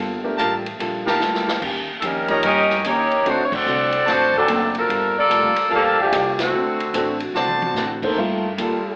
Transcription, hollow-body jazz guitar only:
0.00 0.25 G3 medium
0.00 0.26 A#3 medium
0.00 0.27 F4 medium
0.00 0.27 A4 medium
0.39 0.67 G3 medium
0.39 0.67 A#3 medium
0.39 0.67 F4 medium
0.39 0.67 A4 medium
0.79 1.07 G3 medium
0.79 1.08 A#3 medium
0.79 1.08 F4 medium
0.79 1.08 A4 medium
1.20 1.48 G3 medium
1.20 1.48 A#3 medium
1.20 1.49 F4 medium
1.20 1.49 A4 medium
1.62 1.89 D#3 soft
1.62 1.90 A#3 medium
1.62 1.90 C#4 soft
1.62 1.91 G4 medium
2.03 2.31 D#3 medium
2.03 2.31 A#3 medium
2.03 2.31 C#4 medium
2.03 2.31 G4 medium
2.44 2.71 D#3 soft
2.44 2.72 A#3 medium
2.44 2.72 C#4 medium
2.44 2.72 G4 medium
2.86 3.13 D#3 medium
2.86 3.13 A#3 medium
2.86 3.13 C#4 medium
2.86 3.14 G4 medium
3.25 3.53 D3 soft
3.25 3.53 A3 soft
3.25 3.54 C4 soft
3.25 3.54 F#4 soft
3.66 3.94 D3 medium
3.66 3.94 A3 medium
3.66 3.95 C4 medium
3.66 3.95 F#4 medium
4.07 4.35 D3 medium
4.07 4.35 A3 medium
4.07 4.36 C4 medium
4.07 4.36 F#4 medium
4.48 4.76 D3 medium
4.48 4.76 A3 medium
4.48 4.76 C4 medium
4.48 4.76 F#4 medium
4.88 5.17 G3 soft
4.88 5.17 A#3 soft
4.88 5.17 F4 medium
4.88 5.18 A4 medium
5.29 5.57 G3 medium
5.29 5.58 A#3 medium
5.29 5.58 F4 medium
5.29 5.58 A4 medium
5.68 5.97 G3 soft
5.68 5.98 A#3 medium
5.68 5.98 F4 medium
5.68 5.99 A4 medium
6.12 6.40 G3 medium
6.12 6.40 A#3 medium
6.12 6.40 F4 medium
6.12 6.41 A4 medium
6.54 6.81 D3 soft
6.54 6.82 A3 soft
6.54 6.82 C4 soft
6.54 6.82 F#4 medium
6.95 7.22 D3 medium
6.95 7.22 A3 medium
6.95 7.23 C4 medium
6.95 7.23 F#4 medium
7.35 7.63 D3 soft
7.35 7.64 A3 medium
7.35 7.64 C4 medium
7.35 7.64 F#4 medium
7.77 8.04 D3 medium
7.77 8.04 A3 medium
7.77 8.05 C4 medium
7.77 8.05 F#4 medium
8.18 8.45 G3 medium
8.18 8.45 A#3 medium
8.18 8.46 F4 medium
8.18 8.46 A4 medium
8.57 8.85 G3 medium
8.57 8.86 A#3 medium
8.57 8.86 F4 medium
8.57 8.87 A4 medium

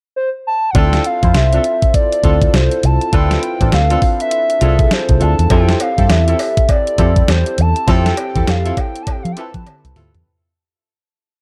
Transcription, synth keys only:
0.75 1.17 C4 medium
0.75 1.18 E4 medium
0.75 1.18 F4 medium
0.75 1.18 A4 medium
1.23 2.15 C4 medium
1.23 2.16 E4 medium
1.23 2.16 F4 medium
1.23 2.16 C5 medium
2.24 3.06 C4 medium
2.24 3.06 E4 medium
2.24 3.06 F4 medium
2.24 3.06 A4 medium
3.12 3.55 C4 medium
3.12 3.55 E4 medium
3.12 3.55 F4 medium
3.12 3.55 B4 medium
3.61 4.53 C4 medium
3.61 4.53 D4 medium
3.61 4.53 F4 medium
3.61 4.54 A4 medium
4.61 5.43 C4 medium
4.61 5.43 E4 medium
4.61 5.44 F4 medium
4.61 4.70 G#4 medium
4.69 5.47 A4 medium
5.50 5.92 C4 medium
5.50 5.93 E4 medium
5.50 5.93 G4 medium
5.50 5.93 A4 medium
5.98 6.90 C4 medium
5.98 6.91 E4 medium
5.98 6.91 G4 medium
5.98 6.91 A4 medium
6.98 7.80 C4 medium
6.98 7.81 E4 medium
6.98 7.81 G4 medium
6.98 7.81 A4 medium
7.87 8.30 C4 medium
7.87 8.30 E4 medium
7.87 8.30 G4 medium
7.87 8.31 A4 medium
8.36 9.28 C4 medium
8.36 9.28 E4 medium
8.36 9.28 G4 medium
8.36 9.29 A4 medium
9.36 10.18 C4 medium
9.36 10.18 E4 medium
9.36 10.19 G4 medium
9.36 10.19 B4 medium

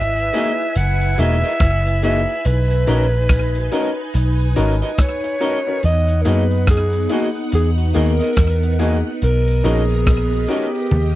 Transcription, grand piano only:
0.33 0.49 A#3 loud
0.33 0.49 D#4 medium
0.33 0.49 F#4 medium
0.33 0.49 G#4 loud
1.18 1.34 A#3 medium
1.18 1.34 D#4 medium
1.18 1.34 F#4 medium
1.18 1.34 G#4 loud
2.03 2.19 A#3 loud
2.03 2.19 D#4 loud
2.03 2.19 F#4 medium
2.03 2.19 G#4 loud
2.87 3.03 C#4 loud
2.87 3.03 D#4 medium
2.87 3.03 F#4 medium
2.87 3.03 A#4 loud
3.56 3.62 F#4 soft
3.56 3.62 A#4 soft
3.72 3.88 C#4 loud
3.72 3.88 D#4 medium
3.72 3.88 F#4 medium
3.72 3.88 A#4 loud
4.56 4.72 C#4 medium
4.56 4.72 D#4 medium
4.56 4.72 F#4 medium
4.56 4.72 A#4 loud
5.41 5.57 C#4 medium
5.41 5.57 D#4 medium
5.41 5.57 F#4 medium
5.41 5.57 A#4 loud
5.67 5.77 C#4 medium
5.67 5.77 D#4 medium
5.67 5.77 F#4 medium
5.67 5.77 A#4 medium
6.25 6.41 A#3 loud
6.25 6.41 D#4 medium
6.25 6.41 F#4 loud
6.25 6.42 G#4 loud
7.10 7.26 A#3 loud
7.10 7.26 D#4 medium
7.10 7.26 F#4 medium
7.10 7.26 G#4 loud
7.94 8.10 A#3 loud
7.94 8.10 D#4 medium
7.94 8.10 F#4 medium
7.94 8.11 G#4 medium
8.79 8.95 A#3 loud
8.79 8.95 D#4 medium
8.79 8.95 F#4 medium
8.79 8.95 G#4 loud
9.64 9.80 C#4 loud
9.64 9.80 D#4 loud
9.64 9.80 F#4 medium
9.64 9.80 A#4 loud
10.32 10.39 F#4 soft
10.32 10.39 A#4 soft
10.48 10.64 C#4 loud
10.48 10.64 D#4 medium
10.48 10.64 F#4 medium
10.48 10.65 A#4 loud

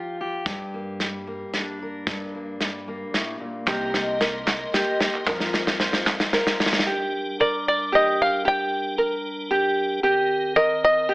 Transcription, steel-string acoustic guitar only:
0.00 0.46 F3 medium
0.00 0.43 F4 soft
0.00 0.19 G4 medium
0.21 1.82 G4 medium
0.47 2.06 G2 medium
0.74 1.27 A#3 soft
1.01 2.60 G3 soft
1.27 2.33 A#3 medium
1.55 3.68 D4 soft
1.82 3.17 A#4 soft
2.07 3.13 G2 medium
2.35 2.87 A#3 soft
2.60 3.64 G3 medium
2.88 5.27 A#3 medium
3.14 3.40 A2 medium
3.40 3.67 A#2 medium

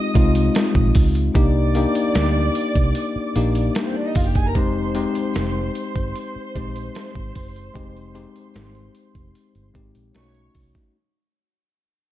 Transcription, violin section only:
0.00 0.92 D#5 medium
0.00 0.91 D#6 loud
1.36 3.74 D5 loud
1.36 3.74 D6 medium
3.86 3.96 C4 medium
3.86 3.96 C5 medium
3.95 4.05 D4 medium
3.95 4.05 D5 medium
4.05 4.15 D#4 medium
4.05 4.15 D#5 medium
4.15 4.26 F4 medium
4.15 4.25 F5 medium
4.25 4.35 G4 medium
4.25 4.36 G5 medium
4.36 4.46 G#4 medium
4.36 4.46 G#5 medium
4.47 4.56 A#4 medium
4.47 4.56 A#5 medium
4.57 9.72 C5 medium
4.57 9.72 C6 loud
10.15 10.54 C#5 medium
10.15 10.54 C#6 loud

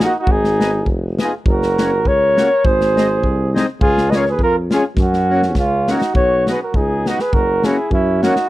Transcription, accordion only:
0.01 0.12 A#3 medium
0.01 0.12 D#4 medium
0.01 0.12 F#4 medium
0.59 0.71 B3 medium
0.59 0.71 D#4 medium
0.59 0.71 G#4 medium
1.20 1.31 B3 medium
1.20 1.31 D#4 medium
1.20 1.31 G#4 medium
1.78 1.90 A#3 medium
1.78 1.91 C#4 medium
1.78 1.90 F#4 medium
2.36 2.49 A#3 medium
2.36 2.48 C#4 medium
2.36 2.49 F#4 medium
2.96 3.08 G#3 medium
2.96 3.08 C4 soft
2.96 3.08 D#4 medium
3.55 3.66 G#3 medium
3.55 3.66 C4 medium
3.55 3.66 D#4 medium
4.14 4.25 G#3 medium
4.14 4.25 C#4 medium
4.14 4.25 F4 medium
4.71 4.82 G#3 medium
4.71 4.82 C#4 medium
4.71 4.82 F4 medium
5.30 5.41 A#3 medium
5.30 5.41 C#4 soft
5.30 5.41 F#4 medium
5.88 6.00 A#3 medium
5.88 6.00 C#4 medium
5.88 6.00 F#4 medium
6.48 6.60 B3 soft
6.48 6.60 D#4 medium
6.48 6.60 F#4 medium
7.07 7.19 B3 medium
7.07 7.18 D#4 medium
7.07 7.19 F#4 medium
7.65 7.77 A#3 medium
7.65 7.77 C#4 medium
7.65 7.77 F#4 medium
8.22 8.35 A#3 medium
8.22 8.34 C#4 medium
8.22 8.34 F#4 medium

